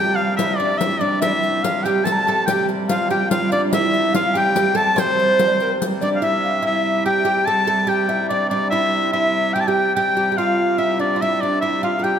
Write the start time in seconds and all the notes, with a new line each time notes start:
Already playing: C3 G3 G4 G5
0.15 F5
0.36 E4 E5, riq
0.57 D4 D5
0.78 E4 E5, riq
0.99 D4 D5
1.20 C3 G3 E4 E5, riq
1.26 D5
1.33 E5
1.44 riq
1.62 F4 F5, riq
1.82 G4 G5, riq
2.04 A4 A5, riq
2.12 A#5
2.19 A5
2.27 A4, riq
2.46 G4 G5, riq
2.69 riq
2.89 F4 F5, riq
3.10 G4 G5, riq
3.29 F4 F5, riq
3.51 D4 D5, riq
3.72 E4 E5, riq
3.94 riq
4.12 F4 F5, riq
4.33 G4 G5, riq
4.37 G5
4.56 G4, riq
4.75 A4 A5, riq
4.96 C4 C5, riq
5.19 riq
5.39 riq
5.47 D5
5.53 C5
5.60 A#4, riq
5.73 C5
5.82 riq
6.01 D4 D5, riq
6.16 F5
6.22 C3 G3 E4 E5
6.44 F5
6.62 E4 E5
6.66 E5
7.06 G4 G5
7.25 G4
7.45 A4 A5
7.67 A4
7.87 G4 G5
8.09 E4 E5
8.29 D4 D5
8.49 D4 D5
8.70 E4 E5
9.13 E4 E5
9.53 G4 G5
9.61 A5
9.67 G4 G5
9.96 G4 G5
10.17 G4
10.32 G4
10.37 F4 F5
10.78 E4 E5
10.99 D4 D5
11.16 F4
11.20 C3 G3 E4 E5
11.40 D4 D5
11.61 E4 E5
11.82 F4 F5
11.99 A4 G5
12.04 G4